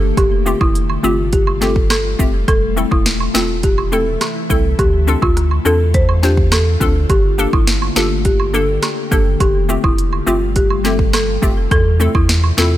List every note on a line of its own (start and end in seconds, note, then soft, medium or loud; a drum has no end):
0.00 0.13 G1 loud
0.00 0.15 D3 medium
0.00 11.67 A3 medium
0.00 0.15 A#3 medium
0.00 0.15 G4 medium
0.17 0.54 F1 loud
0.17 2.46 C3 medium
0.17 2.46 G3 medium
0.17 2.46 F4 medium
0.17 0.42 G4 loud
0.17 kick loud
0.17 closed hi-hat medium
0.17 high woodblock medium
0.46 0.57 A3 medium
0.46 0.58 C4 medium
0.46 0.58 F4 medium
0.46 0.58 G4 medium
0.46 cabasa medium
0.61 0.98 F1 medium
0.61 0.73 E4 medium
0.61 kick loud
0.61 high woodblock medium
0.75 closed hi-hat medium
0.90 high woodblock medium
1.03 2.15 G1 medium
1.03 1.15 A3 medium
1.03 1.15 C4 medium
1.03 1.15 F4 medium
1.03 1.16 F4 medium
1.03 1.16 G4 medium
1.03 cabasa medium
1.33 1.45 G4 medium
1.33 kick medium
1.33 closed hi-hat medium
1.47 high woodblock medium
1.61 1.73 A3 medium
1.61 1.73 C4 medium
1.61 1.73 F4 medium
1.61 1.73 G4 medium
1.61 1.74 A4 medium
1.61 snare medium
1.61 cabasa medium
1.76 kick medium
1.90 2.31 A4 medium
1.90 cross-stick loud
1.90 snare loud
1.90 closed hi-hat medium
1.90 high woodblock medium
2.19 2.44 F1 medium
2.19 2.31 A3 medium
2.19 2.31 C4 medium
2.19 2.31 F4 medium
2.19 2.31 G4 medium
2.19 kick medium
2.19 cabasa medium
2.48 2.85 E1 loud
2.48 4.77 C3 medium
2.48 4.77 E3 medium
2.48 4.77 E4 medium
2.48 2.73 A4 loud
2.48 kick loud
2.48 closed hi-hat medium
2.48 high woodblock medium
2.76 2.88 A3 medium
2.76 2.88 C4 medium
2.76 2.89 E4 medium
2.76 2.89 A4 medium
2.76 cabasa medium
2.91 3.29 E1 loud
2.91 3.04 E4 medium
2.91 kick loud
2.91 high woodblock medium
3.06 snare loud
3.06 closed hi-hat medium
3.20 high woodblock medium
3.34 4.17 E1 medium
3.34 3.46 A3 medium
3.34 3.46 C4 medium
3.34 3.46 E4 medium
3.34 3.47 F4 medium
3.34 3.46 A4 medium
3.34 snare loud
3.34 cabasa medium
3.63 3.76 G4 medium
3.63 kick medium
3.63 closed hi-hat medium
3.78 high woodblock medium
3.92 4.04 A3 medium
3.92 4.04 C4 medium
3.92 4.04 E4 medium
3.92 4.05 A4 medium
3.92 4.04 A4 medium
3.92 cabasa medium
4.21 cross-stick loud
4.21 snare medium
4.21 closed hi-hat medium
4.21 high woodblock medium
4.50 4.75 C2 medium
4.50 4.61 A3 medium
4.50 4.61 C4 medium
4.50 4.62 E4 medium
4.50 4.62 A4 medium
4.50 kick medium
4.50 cabasa medium
4.79 5.16 D2 loud
4.79 9.36 D3 medium
4.79 7.07 C4 medium
4.79 7.07 F4 medium
4.79 5.03 G4 loud
4.79 kick loud
4.79 closed hi-hat medium
4.79 high woodblock medium
5.07 5.19 C4 medium
5.07 5.19 D4 medium
5.07 5.19 F4 medium
5.07 5.20 A4 medium
5.07 cabasa medium
5.22 5.59 D2 loud
5.22 5.34 F4 medium
5.22 kick loud
5.22 high woodblock medium
5.37 cross-stick medium
5.37 closed hi-hat medium
5.51 high woodblock medium
5.65 6.77 E2 medium
5.65 5.77 C4 medium
5.65 5.77 D4 medium
5.65 5.77 F4 medium
5.65 5.78 A4 medium
5.65 5.77 A4 medium
5.65 cabasa medium
5.94 6.07 C5 medium
5.94 kick medium
5.94 closed hi-hat medium
6.09 high woodblock medium
6.23 6.34 C4 medium
6.23 6.35 D4 medium
6.23 6.35 F4 medium
6.23 6.35 G4 medium
6.23 6.35 C5 medium
6.23 snare medium
6.23 cabasa medium
6.37 kick medium
6.52 6.93 A4 medium
6.52 cross-stick loud
6.52 snare loud
6.52 closed hi-hat medium
6.52 high woodblock medium
6.80 7.06 D2 loud
6.80 6.92 C4 medium
6.80 6.92 D4 medium
6.80 6.92 F4 medium
6.80 6.93 A4 medium
6.80 kick loud
6.80 cabasa medium
7.10 7.47 G1 loud
7.10 9.38 A#3 medium
7.10 7.34 G4 loud
7.10 9.38 G4 medium
7.10 kick loud
7.10 closed hi-hat medium
7.10 high woodblock medium
7.38 7.50 A#3 medium
7.38 7.50 D4 medium
7.38 7.50 G4 medium
7.38 7.50 A4 medium
7.38 cabasa medium
7.53 7.90 G1 medium
7.53 7.65 E4 medium
7.53 kick loud
7.53 high woodblock medium
7.67 snare loud
7.67 closed hi-hat medium
7.82 high woodblock medium
7.96 8.79 G1 medium
7.96 8.08 A#3 medium
7.96 8.08 D4 medium
7.96 8.08 F4 medium
7.96 8.08 G4 medium
7.96 8.08 A4 medium
7.96 snare loud
7.96 cabasa medium
8.25 8.37 G4 medium
8.25 kick medium
8.25 closed hi-hat medium
8.40 high woodblock medium
8.53 8.65 A#3 medium
8.53 8.65 D4 medium
8.53 8.66 G4 medium
8.53 8.66 A4 medium
8.53 cabasa medium
8.83 cross-stick loud
8.83 snare medium
8.83 closed hi-hat medium
8.83 high woodblock medium
9.11 9.36 G1 loud
9.11 9.23 A#3 medium
9.11 9.23 D4 medium
9.11 9.23 G4 medium
9.11 9.24 A4 medium
9.11 9.23 A4 medium
9.11 kick medium
9.11 cabasa medium
9.40 9.78 F1 loud
9.40 12.78 C3 medium
9.40 11.69 G3 medium
9.40 11.69 F4 medium
9.40 9.65 G4 loud
9.40 kick loud
9.40 closed hi-hat medium
9.40 high woodblock medium
9.69 9.81 A3 medium
9.69 9.81 C4 medium
9.69 9.81 F4 medium
9.69 9.81 G4 medium
9.69 cabasa medium
9.84 10.21 F1 loud
9.84 9.96 E4 medium
9.84 kick loud
9.84 high woodblock medium
9.98 closed hi-hat medium
10.13 high woodblock medium
10.26 11.38 G1 medium
10.26 10.38 A3 medium
10.26 10.38 C4 medium
10.26 10.39 F4 medium
10.26 10.39 G4 medium
10.26 cabasa medium
10.56 10.68 G4 medium
10.56 kick medium
10.56 closed hi-hat medium
10.70 high woodblock medium
10.84 10.96 A3 medium
10.84 10.96 C4 medium
10.84 10.96 F4 medium
10.84 10.97 G4 medium
10.84 10.97 A4 medium
10.84 snare medium
10.84 cabasa medium
10.99 kick medium
11.13 11.54 A4 medium
11.13 cross-stick loud
11.13 snare loud
11.13 closed hi-hat medium
11.13 high woodblock medium
11.42 11.67 F1 medium
11.42 11.54 A3 medium
11.42 11.54 C4 medium
11.42 11.54 F4 medium
11.42 11.54 G4 medium
11.42 kick loud
11.42 cabasa medium
11.71 12.08 E2 loud
11.71 12.78 E3 medium
11.71 12.78 A3 medium
11.71 12.78 E4 medium
11.71 11.96 A4 loud
11.71 kick loud
11.71 closed hi-hat medium
11.71 high woodblock medium
12.00 12.11 A3 medium
12.00 12.12 C4 medium
12.00 12.12 E4 medium
12.00 12.12 A4 medium
12.00 cabasa medium
12.15 12.52 E2 loud
12.15 12.27 E4 medium
12.15 kick loud
12.15 high woodblock medium
12.29 snare loud
12.29 closed hi-hat medium
12.44 high woodblock medium
12.57 12.78 E2 medium
12.57 12.69 A3 medium
12.57 12.69 C4 medium
12.57 12.69 E4 medium
12.57 12.70 F4 medium
12.57 12.70 A4 medium
12.57 snare loud
12.57 cabasa medium